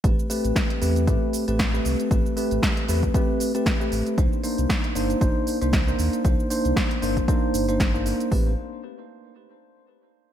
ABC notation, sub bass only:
X:1
M:4/4
L:1/16
Q:"Swing 16ths" 1/4=116
K:Am
V:1 name="Sub bass" clef=bass
A,,, z2 A,,, z2 E,,2 A,, z2 A,,,3 C,, z | A,,, z2 A,,, z2 E,, z6 z A,,, z | C,, z2 C,, z2 G,,, z G,,, z2 C,,3 _E,, z | C,, z2 C,, z2 G,,, z3 G,,,4- G,,, z |
A,,,2 z12 z2 |]